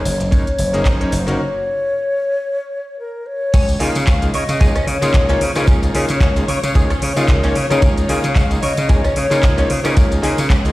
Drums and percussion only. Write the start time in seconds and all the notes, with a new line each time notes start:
0.05 open hi-hat, tambourine
0.20 closed hi-hat, tambourine
0.32 kick, closed hi-hat, tambourine
0.47 closed hi-hat, tambourine
0.58 open hi-hat, tambourine
0.74 closed hi-hat, tambourine
0.85 kick, clap, closed hi-hat, tambourine
1.01 closed hi-hat
1.12 open hi-hat, tambourine
1.27 closed hi-hat, tambourine
3.54 kick, closed hi-hat, crash, tambourine
3.69 closed hi-hat, tambourine
3.80 open hi-hat
3.95 closed hi-hat, tambourine
4.07 kick, clap, closed hi-hat, tambourine
4.22 closed hi-hat, tambourine
4.34 open hi-hat
4.49 closed hi-hat, tambourine
4.61 kick, closed hi-hat, tambourine
4.75 cross-stick, closed hi-hat, tambourine
4.88 open hi-hat
5.02 closed hi-hat, tambourine
5.14 kick, clap, closed hi-hat, tambourine
5.29 closed hi-hat, tambourine
5.41 open hi-hat
5.55 cross-stick, closed hi-hat, tambourine
5.67 kick, closed hi-hat, tambourine
5.83 closed hi-hat, tambourine
5.95 open hi-hat
6.09 closed hi-hat, tambourine
6.21 kick, clap, closed hi-hat, tambourine
6.36 closed hi-hat, tambourine
6.48 open hi-hat
6.63 closed hi-hat, tambourine
6.75 kick, closed hi-hat, tambourine
6.90 cross-stick, closed hi-hat, tambourine
7.02 open hi-hat
7.17 closed hi-hat, tambourine
7.28 kick, clap, closed hi-hat, tambourine
7.43 closed hi-hat, tambourine
7.55 open hi-hat
7.71 cross-stick, closed hi-hat, tambourine
7.82 kick, closed hi-hat, tambourine
7.98 closed hi-hat, tambourine
8.09 open hi-hat
8.24 closed hi-hat, tambourine
8.36 kick, clap, closed hi-hat, tambourine
8.51 closed hi-hat, tambourine
8.63 open hi-hat
8.77 closed hi-hat, tambourine
8.89 kick, closed hi-hat, tambourine
9.04 cross-stick, closed hi-hat, tambourine
9.16 open hi-hat
9.31 closed hi-hat, tambourine
9.43 kick, clap, closed hi-hat, tambourine
9.58 closed hi-hat, tambourine
9.70 open hi-hat
9.85 cross-stick, closed hi-hat, tambourine
9.97 kick, closed hi-hat, tambourine
10.12 closed hi-hat, tambourine
10.23 open hi-hat
10.38 closed hi-hat, tambourine
10.50 kick, clap, closed hi-hat, tambourine
10.65 closed hi-hat, tambourine